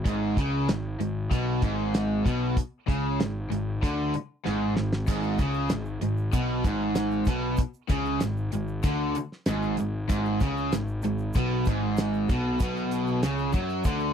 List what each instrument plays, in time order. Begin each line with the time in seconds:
0.05 picked electric bass G#1, overdriven electric guitar G#2, kick, closed hi-hat
0.37 picked electric bass C#2, overdriven electric guitar C#3, kick, closed hi-hat
0.69 picked electric bass G#1, overdriven electric guitar G#2, snare, closed hi-hat
1.00 picked electric bass G#1, overdriven electric guitar G#2, closed hi-hat
1.31 picked electric bass B1, overdriven electric guitar B2, kick, closed hi-hat
1.62 picked electric bass G#1, overdriven electric guitar G#2, kick, closed hi-hat
1.94 snare, closed hi-hat
2.24 picked electric bass B1, overdriven electric guitar B2, kick, closed hi-hat
2.57 kick, closed hi-hat
2.88 picked electric bass C#2, overdriven electric guitar C#3, kick, closed hi-hat
3.20 picked electric bass G#1, overdriven electric guitar G#2, snare, closed hi-hat
3.50 picked electric bass G#1, overdriven electric guitar G#2, closed hi-hat
3.82 picked electric bass D2, overdriven electric guitar D3, kick, closed hi-hat
4.14 muted overdriven electric guitar stroke, muted picked electric bass stroke, closed hi-hat
4.45 picked electric bass G#1, overdriven electric guitar G#2, snare
4.76 picked electric bass G#1, overdriven electric guitar G#2, snare
4.93 snare
5.07 picked electric bass G#1, overdriven electric guitar G#2, kick, closed hi-hat, crash, shaker
5.23 shaker
5.38 picked electric bass C#2, overdriven electric guitar C#3, kick, closed hi-hat, shaker
5.54 shaker
5.69 picked electric bass G#1, overdriven electric guitar G#2, snare, closed hi-hat, shaker
5.85 shaker
6.01 picked electric bass G#1, overdriven electric guitar G#2, closed hi-hat
6.17 shaker
6.33 picked electric bass B1, overdriven electric guitar B2, kick, closed hi-hat, shaker
6.64 picked electric bass G#1, overdriven electric guitar G#2, kick, closed hi-hat, shaker
6.95 snare, closed hi-hat, shaker
7.11 shaker
7.25 picked electric bass B1, overdriven electric guitar B2, kick, closed hi-hat, shaker
7.57 kick, closed hi-hat, shaker
7.74 shaker
7.89 picked electric bass C#2, overdriven electric guitar C#3, kick, closed hi-hat, shaker
8.06 shaker
8.20 picked electric bass G#1, overdriven electric guitar G#2, snare, closed hi-hat, shaker
8.37 shaker
8.52 picked electric bass G#1, overdriven electric guitar G#2, closed hi-hat, shaker
8.68 shaker
8.83 picked electric bass D2, overdriven electric guitar D3, kick, closed hi-hat, shaker
9.15 muted overdriven electric guitar stroke, muted picked electric bass stroke, closed hi-hat, shaker
9.32 snare
9.46 picked electric bass G#1, overdriven electric guitar G#2, snare, closed hi-hat, shaker
9.62 shaker
9.77 picked electric bass G#1, overdriven electric guitar G#2, closed hi-hat, shaker
10.08 picked electric bass G#1, overdriven electric guitar G#2, kick, closed hi-hat, shaker
10.25 shaker
10.40 picked electric bass C#2, overdriven electric guitar C#3, kick, closed hi-hat, shaker
10.57 shaker
10.72 picked electric bass G#1, overdriven electric guitar G#2, snare, closed hi-hat, shaker
10.87 shaker
11.02 picked electric bass G#1, overdriven electric guitar G#2, closed hi-hat, shaker
11.18 shaker
11.33 picked electric bass B1, overdriven electric guitar B2, kick, closed hi-hat, shaker
11.65 picked electric bass G#1, overdriven electric guitar G#2, kick, closed hi-hat, shaker
11.97 snare, closed hi-hat, shaker
12.14 shaker
12.29 picked electric bass B1, overdriven electric guitar B2, kick, closed hi-hat, shaker
12.60 picked electric bass B1, overdriven electric guitar B2, kick, closed hi-hat, shaker
12.76 shaker
12.91 closed hi-hat, shaker
13.07 shaker
13.23 picked electric bass C#2, overdriven electric guitar C#3, snare, closed hi-hat, shaker
13.38 shaker
13.52 picked electric bass F#2, overdriven electric guitar F#3, kick, closed hi-hat, shaker
13.69 shaker
13.84 picked electric bass D2, overdriven electric guitar D3, kick, closed hi-hat, shaker
13.99 shaker